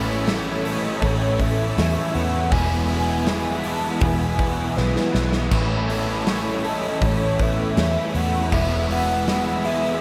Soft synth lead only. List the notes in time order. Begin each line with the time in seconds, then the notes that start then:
0.68 D#5
1.04 C#5
1.41 E5
2.14 F#5
2.51 G#5
3.64 A5
4.00 G#5
4.77 B4
6.69 D#5
7.06 C#5
7.42 E5
8.16 F#5
8.53 E5
8.92 F#5
9.65 E5